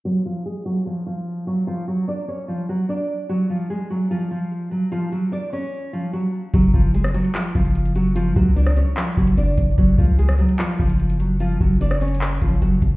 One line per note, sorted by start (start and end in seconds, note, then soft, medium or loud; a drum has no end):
0.05 0.22 F#3 medium
0.05 0.21 F#4 loud
0.26 0.42 F3 medium
0.26 0.42 F4 medium
0.46 0.62 G#3 medium
0.46 0.62 G#4 medium
0.66 0.83 F#3 medium
0.66 0.82 F#4 medium
0.86 1.03 F3 medium
0.86 1.03 F4 medium
1.06 1.45 F3 medium
1.06 1.45 F4 medium
1.47 1.64 F#3 medium
1.47 1.63 F#4 medium
1.67 1.84 F3 medium
1.67 1.84 F4 loud
1.88 2.04 F#3 medium
1.88 2.04 F#4 medium
2.08 2.24 D4 medium
2.08 2.25 D5 medium
2.28 2.44 C#4 medium
2.28 2.45 C#5 medium
2.48 2.65 F3 medium
2.48 2.65 F4 medium
2.69 2.86 F#3 medium
2.69 2.85 F#4 medium
2.89 3.27 D4 medium
2.89 3.27 D5 medium
3.29 3.46 F#3 medium
3.29 3.46 F#4 loud
3.50 3.66 F3 medium
3.50 3.66 F4 medium
3.70 3.87 G#3 medium
3.70 3.86 G#4 medium
3.90 4.07 F#3 medium
3.90 4.07 F#4 medium
4.11 4.27 F3 medium
4.11 4.27 F4 medium
4.31 4.69 F3 medium
4.31 4.69 F4 medium
4.71 4.88 F#3 soft
4.71 4.88 F#4 medium
4.92 5.08 F3 medium
4.92 5.08 F4 loud
5.12 5.29 F#3 medium
5.12 5.28 F#4 medium
5.32 5.48 D4 medium
5.32 5.49 D5 medium
5.53 5.91 C#4 medium
5.53 5.91 C#5 medium
5.93 6.10 F3 medium
5.93 6.09 F4 medium
6.13 6.30 F#3 medium
6.13 6.30 F#4 medium
6.54 6.73 F#1 loud
6.54 6.71 F#3 medium
6.54 6.70 F#4 loud
6.54 kick loud
6.54 closed hi-hat medium
6.74 7.23 F#1 loud
6.74 6.91 F3 medium
6.74 6.90 F4 medium
6.74 kick loud
6.94 7.11 G#3 medium
6.94 7.11 G#4 medium
6.94 closed hi-hat medium
7.04 cross-stick loud
7.14 7.31 F#3 medium
7.14 7.31 F#4 loud
7.14 closed hi-hat medium
7.25 closed hi-hat medium
7.35 7.52 F3 medium
7.35 7.51 F4 medium
7.35 clap loud
7.35 closed hi-hat medium
7.55 8.33 F#1 loud
7.55 7.93 F3 medium
7.55 7.93 F4 medium
7.55 kick loud
7.55 closed hi-hat soft
7.65 closed hi-hat medium
7.75 closed hi-hat medium
7.85 closed hi-hat medium
7.96 8.12 F#3 medium
7.96 8.12 F#4 medium
7.96 closed hi-hat medium
8.16 8.33 F3 medium
8.16 8.32 F4 loud
8.16 closed hi-hat medium
8.36 8.85 C#2 loud
8.36 8.53 F#3 medium
8.36 8.52 F#4 medium
8.36 kick loud
8.56 8.73 D4 medium
8.56 8.73 D5 medium
8.56 closed hi-hat medium
8.66 cross-stick loud
8.76 8.93 C#4 medium
8.76 8.93 C#5 medium
8.76 closed hi-hat medium
8.97 9.14 F3 medium
8.97 9.13 F4 medium
8.97 clap loud
8.97 closed hi-hat medium
9.17 9.37 F#1 loud
9.17 9.34 F#3 medium
9.17 9.34 F#4 medium
9.17 kick loud
9.17 closed hi-hat medium
9.27 closed hi-hat medium
9.37 9.57 F#1 loud
9.37 9.75 D4 medium
9.37 9.76 D5 medium
9.37 closed hi-hat medium
9.58 9.77 F#1 loud
9.58 kick loud
9.58 closed hi-hat medium
9.78 9.97 F#1 loud
9.78 9.95 F#3 medium
9.78 9.94 F#4 loud
9.78 kick loud
9.78 closed hi-hat medium
9.98 10.47 C#2 loud
9.98 10.15 F3 medium
9.98 10.15 F4 medium
9.98 kick loud
10.19 10.35 G#3 medium
10.19 10.35 G#4 medium
10.19 closed hi-hat medium
10.29 cross-stick loud
10.39 10.56 F#3 medium
10.39 10.55 F#4 medium
10.39 closed hi-hat medium
10.49 closed hi-hat medium
10.59 10.76 F3 medium
10.59 10.76 F4 medium
10.59 clap loud
10.59 closed hi-hat medium
10.79 11.57 F#1 loud
10.79 11.18 F3 medium
10.79 11.18 F4 medium
10.79 kick medium
10.79 closed hi-hat soft
10.89 closed hi-hat medium
11.00 closed hi-hat medium
11.10 closed hi-hat medium
11.20 11.37 F#3 soft
11.20 11.36 F#4 medium
11.20 closed hi-hat medium
11.40 11.57 F3 medium
11.40 11.57 F4 loud
11.40 closed hi-hat medium
11.60 12.38 F#1 loud
11.60 11.77 F#3 medium
11.60 11.77 F#4 medium
11.60 kick loud
11.81 11.97 D4 medium
11.81 11.98 D5 medium
11.81 closed hi-hat medium
11.91 cross-stick loud
12.01 12.39 C#4 medium
12.01 12.40 C#5 medium
12.01 closed hi-hat soft
12.01 open hi-hat medium
12.08 closed hi-hat medium
12.15 closed hi-hat medium
12.21 clap loud
12.21 closed hi-hat medium
12.42 12.61 F#1 loud
12.42 12.58 F3 medium
12.42 12.58 F4 medium
12.42 kick medium
12.42 closed hi-hat medium
12.48 closed hi-hat medium
12.55 closed hi-hat soft
12.62 12.81 F#1 loud
12.62 12.79 F#3 medium
12.62 12.78 F#4 medium
12.62 closed hi-hat medium
12.82 12.96 F#1 loud
12.82 kick loud
12.82 closed hi-hat medium